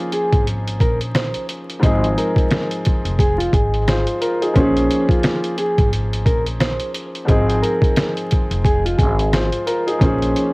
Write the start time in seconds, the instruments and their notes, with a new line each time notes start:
Already playing: grand piano F3 A#3 C#4 D#4 G#4 C5, clean electric guitar F4
0.12 clean electric guitar G#4, closed hi-hat
0.33 upright bass G#1, kick, closed hi-hat
0.47 closed hi-hat
0.68 closed hi-hat
0.80 upright bass A#1, clean electric guitar A#4, kick, closed hi-hat
1.01 closed hi-hat
1.15 clean electric guitar C5, snare, closed hi-hat
1.34 closed hi-hat
1.49 closed hi-hat
1.70 closed hi-hat
1.79 upright bass G#1, grand piano G#2 F3 G#3 C4, kick, closed hi-hat
1.84 grand piano D#4 G#4
2.04 closed hi-hat
2.18 clean electric guitar A#4, closed hi-hat
2.36 kick, closed hi-hat
2.51 snare, closed hi-hat
2.71 closed hi-hat
2.85 kick, closed hi-hat
3.05 upright bass F1, closed hi-hat
3.19 clean electric guitar G#4, kick, closed hi-hat
3.38 clean electric guitar F4, closed hi-hat
3.53 upright bass G#1, clean electric guitar G#4, kick, closed hi-hat
3.74 closed hi-hat
3.88 grand piano F4 C5, snare, closed hi-hat
4.07 closed hi-hat
4.21 grand piano F4 A#4, closed hi-hat
4.42 grand piano D#4 G#4, closed hi-hat
4.54 upright bass A#1, grand piano F3 A#3 C5, clean electric guitar C#4, kick, closed hi-hat
4.58 grand piano C#4 G#4
4.77 closed hi-hat
4.91 closed hi-hat
5.09 clean electric guitar F4, kick, closed hi-hat
5.23 snare, closed hi-hat
5.44 closed hi-hat
5.58 clean electric guitar G#4, closed hi-hat
5.78 upright bass G#1, kick, closed hi-hat
5.93 closed hi-hat
6.13 closed hi-hat
6.25 upright bass A#1, clean electric guitar A#4, kick, closed hi-hat
6.46 closed hi-hat
6.60 clean electric guitar C5, snare, closed hi-hat
6.80 closed hi-hat
6.94 closed hi-hat
7.15 closed hi-hat
7.25 upright bass G#1, grand piano G#2 F3 G#3 C4, kick
7.29 grand piano D#4 G#4, closed hi-hat
7.50 closed hi-hat
7.62 clean electric guitar A#4, closed hi-hat
7.82 kick, closed hi-hat
7.96 snare, closed hi-hat
8.17 closed hi-hat
8.31 kick, closed hi-hat
8.51 upright bass F1, closed hi-hat
8.65 clean electric guitar G#4, kick, closed hi-hat
8.85 clean electric guitar F4, closed hi-hat
8.98 upright bass G#1, clean electric guitar G#4, kick, closed hi-hat
9.19 closed hi-hat
9.33 grand piano F4 C5, snare, closed hi-hat
9.53 closed hi-hat
9.67 grand piano F4 A#4, closed hi-hat
9.87 grand piano D#4 G#4, closed hi-hat
9.99 upright bass A#1, grand piano F3 A#3 C5, clean electric guitar C#4, kick, closed hi-hat
10.04 grand piano C#4 G#4
10.22 closed hi-hat
10.36 closed hi-hat